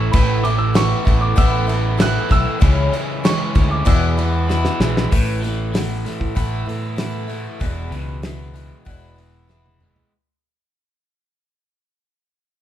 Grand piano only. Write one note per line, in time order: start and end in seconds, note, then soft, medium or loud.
0.00 0.11 C#6 medium
0.12 0.45 B5 medium
0.44 0.60 D6 medium
0.58 0.75 E6 medium
0.76 1.24 C#6 loud
1.21 1.38 D6 medium
1.38 2.02 E6 medium
2.02 2.33 F#6 loud
2.32 3.27 E6 loud
3.25 3.72 C#6 loud
3.71 3.85 D6 medium
3.87 4.76 E6 medium